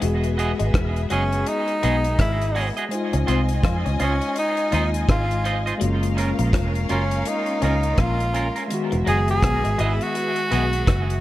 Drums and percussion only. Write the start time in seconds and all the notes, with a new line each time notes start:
0.02 closed hi-hat
0.24 closed hi-hat
0.39 closed hi-hat
0.60 closed hi-hat
0.74 kick, cross-stick, closed hi-hat
0.96 closed hi-hat
1.10 closed hi-hat
1.32 closed hi-hat
1.46 closed hi-hat
1.68 closed hi-hat
1.83 closed hi-hat
2.04 closed hi-hat
2.19 kick, cross-stick, closed hi-hat
2.41 closed hi-hat
2.55 open hi-hat
2.77 closed hi-hat
2.91 closed hi-hat
3.13 closed hi-hat
3.28 closed hi-hat
3.49 closed hi-hat
3.63 kick, cross-stick, closed hi-hat
3.86 closed hi-hat
4.00 closed hi-hat
4.21 closed hi-hat
4.36 closed hi-hat
4.57 closed hi-hat
4.72 closed hi-hat
4.94 closed hi-hat
5.09 kick, cross-stick, closed hi-hat
5.31 closed hi-hat
5.45 closed hi-hat
5.67 closed hi-hat
5.81 closed hi-hat
6.03 closed hi-hat
6.18 closed hi-hat
6.39 closed hi-hat
6.53 kick, cross-stick, closed hi-hat
6.75 closed hi-hat
6.89 closed hi-hat
7.11 closed hi-hat
7.25 closed hi-hat
7.46 closed hi-hat
7.62 closed hi-hat
7.83 closed hi-hat
7.98 kick, cross-stick, closed hi-hat
8.20 closed hi-hat
8.34 closed hi-hat
8.56 closed hi-hat
8.70 closed hi-hat
8.92 closed hi-hat
9.07 closed hi-hat
9.28 closed hi-hat
9.43 kick, cross-stick, closed hi-hat
9.65 closed hi-hat
9.79 closed hi-hat
10.01 closed hi-hat
10.15 closed hi-hat
10.36 closed hi-hat
10.52 closed hi-hat
10.73 closed hi-hat
10.87 kick, cross-stick, closed hi-hat
11.10 closed hi-hat